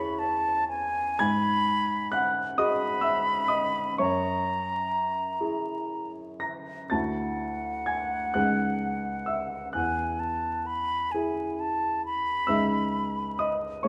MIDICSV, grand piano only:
0, 0, Header, 1, 2, 480
1, 0, Start_track
1, 0, Tempo, 990099
1, 575, Time_signature, 6, 3, 24, 8
1, 575, Tempo, 936037
1, 2495, Tempo, 993377
1, 3455, Tempo, 960000
1, 4415, Tempo, 921659
1, 5855, Tempo, 902256
1, 7067, End_track
2, 0, Start_track
2, 0, Title_t, "Grand piano"
2, 0, Program_c, 0, 0
2, 0, Control_c, 0, 64, 127
2, 0, Note_on_c, 0, 40, 43
2, 0, Note_on_c, 0, 64, 37
2, 0, Note_on_c, 0, 68, 39
2, 0, Note_on_c, 0, 71, 57
2, 0, Note_on_c, 0, 73, 51
2, 0, Note_on_c, 0, 76, 44
2, 0, Note_on_c, 0, 83, 74
2, 0, Note_on_c, 0, 85, 68
2, 0, Note_on_c, 0, 88, 54
2, 558, Note_off_c, 0, 40, 0
2, 561, Note_off_c, 0, 64, 0
2, 562, Note_off_c, 0, 73, 0
2, 564, Note_off_c, 0, 68, 0
2, 577, Note_on_c, 0, 92, 85
2, 578, Note_off_c, 0, 85, 0
2, 582, Note_on_c, 0, 44, 48
2, 583, Note_on_c, 0, 80, 54
2, 586, Note_off_c, 0, 71, 0
2, 586, Note_off_c, 0, 76, 0
2, 586, Control_c, 0, 64, 0
2, 588, Note_off_c, 0, 83, 0
2, 589, Note_off_c, 0, 88, 0
2, 671, Control_c, 0, 64, 127
2, 1037, Note_off_c, 0, 80, 0
2, 1052, Note_on_c, 0, 90, 78
2, 1055, Note_off_c, 0, 92, 0
2, 1060, Note_on_c, 0, 78, 65
2, 1276, Note_off_c, 0, 78, 0
2, 1288, Note_off_c, 0, 90, 0
2, 1290, Note_on_c, 0, 87, 80
2, 1291, Note_on_c, 0, 75, 56
2, 1294, Note_on_c, 0, 68, 39
2, 1295, Note_on_c, 0, 66, 42
2, 1511, Note_on_c, 0, 88, 74
2, 1512, Note_off_c, 0, 75, 0
2, 1519, Note_on_c, 0, 76, 57
2, 1527, Note_off_c, 0, 87, 0
2, 1749, Note_off_c, 0, 76, 0
2, 1753, Note_on_c, 0, 87, 66
2, 1756, Note_on_c, 0, 75, 47
2, 1762, Note_off_c, 0, 88, 0
2, 1990, Note_off_c, 0, 75, 0
2, 1997, Note_off_c, 0, 66, 0
2, 1997, Note_off_c, 0, 68, 0
2, 1998, Note_off_c, 0, 44, 0
2, 2006, Note_off_c, 0, 87, 0
2, 2010, Note_on_c, 0, 85, 65
2, 2013, Note_on_c, 0, 73, 52
2, 2015, Note_on_c, 0, 42, 45
2, 2024, Control_c, 0, 64, 0
2, 2124, Control_c, 0, 64, 127
2, 2724, Note_on_c, 0, 64, 32
2, 2725, Note_on_c, 0, 68, 34
2, 3192, Note_off_c, 0, 73, 0
2, 3205, Note_on_c, 0, 94, 54
2, 3207, Note_on_c, 0, 82, 39
2, 3210, Note_off_c, 0, 85, 0
2, 3434, Note_off_c, 0, 64, 0
2, 3435, Note_off_c, 0, 68, 0
2, 3435, Note_off_c, 0, 82, 0
2, 3436, Note_off_c, 0, 42, 0
2, 3445, Note_on_c, 0, 93, 57
2, 3451, Note_off_c, 0, 94, 0
2, 3452, Note_on_c, 0, 64, 25
2, 3452, Note_on_c, 0, 81, 48
2, 3454, Note_on_c, 0, 66, 26
2, 3455, Note_on_c, 0, 38, 40
2, 3465, Control_c, 0, 64, 0
2, 3542, Control_c, 0, 64, 127
2, 3921, Note_off_c, 0, 81, 0
2, 3927, Note_on_c, 0, 92, 59
2, 3931, Note_on_c, 0, 80, 45
2, 3937, Note_off_c, 0, 93, 0
2, 4159, Note_off_c, 0, 80, 0
2, 4160, Note_off_c, 0, 64, 0
2, 4161, Note_off_c, 0, 66, 0
2, 4162, Note_off_c, 0, 38, 0
2, 4165, Note_on_c, 0, 90, 63
2, 4170, Note_on_c, 0, 78, 45
2, 4172, Note_on_c, 0, 37, 40
2, 4172, Note_on_c, 0, 68, 29
2, 4174, Note_off_c, 0, 92, 0
2, 4175, Note_on_c, 0, 63, 26
2, 4191, Control_c, 0, 64, 0
2, 4273, Control_c, 0, 64, 127
2, 4625, Note_off_c, 0, 78, 0
2, 4636, Note_on_c, 0, 88, 53
2, 4643, Note_off_c, 0, 90, 0
2, 4644, Note_on_c, 0, 76, 40
2, 4865, Note_off_c, 0, 37, 0
2, 4865, Note_off_c, 0, 68, 0
2, 4866, Note_off_c, 0, 63, 0
2, 4870, Note_off_c, 0, 76, 0
2, 4880, Note_on_c, 0, 90, 56
2, 4883, Note_off_c, 0, 88, 0
2, 4888, Note_on_c, 0, 40, 38
2, 4889, Note_on_c, 0, 78, 42
2, 4899, Control_c, 0, 64, 0
2, 4986, Control_c, 0, 64, 127
2, 5617, Note_on_c, 0, 64, 34
2, 5617, Note_on_c, 0, 68, 34
2, 5834, Note_off_c, 0, 78, 0
2, 5850, Note_off_c, 0, 90, 0
2, 6315, Note_off_c, 0, 40, 0
2, 6316, Note_off_c, 0, 64, 0
2, 6316, Note_off_c, 0, 68, 0
2, 6316, Note_on_c, 0, 88, 72
2, 6323, Note_on_c, 0, 37, 40
2, 6324, Note_on_c, 0, 76, 50
2, 6328, Note_on_c, 0, 63, 33
2, 6328, Note_on_c, 0, 68, 31
2, 6345, Control_c, 0, 64, 0
2, 6420, Control_c, 0, 64, 127
2, 6788, Note_off_c, 0, 76, 0
2, 6806, Note_off_c, 0, 88, 0
2, 6806, Note_on_c, 0, 87, 61
2, 6811, Note_on_c, 0, 75, 49
2, 7028, Note_off_c, 0, 37, 0
2, 7030, Note_off_c, 0, 63, 0
2, 7030, Note_off_c, 0, 68, 0
2, 7036, Note_off_c, 0, 75, 0
2, 7040, Note_on_c, 0, 85, 65
2, 7045, Note_on_c, 0, 73, 50
2, 7047, Note_on_c, 0, 68, 30
2, 7048, Note_on_c, 0, 45, 44
2, 7049, Note_on_c, 0, 61, 29
2, 7051, Note_off_c, 0, 87, 0
2, 7066, Control_c, 0, 64, 0
2, 7067, Note_off_c, 0, 45, 0
2, 7067, Note_off_c, 0, 61, 0
2, 7067, Note_off_c, 0, 68, 0
2, 7067, Note_off_c, 0, 73, 0
2, 7067, Note_off_c, 0, 85, 0
2, 7067, End_track
0, 0, End_of_file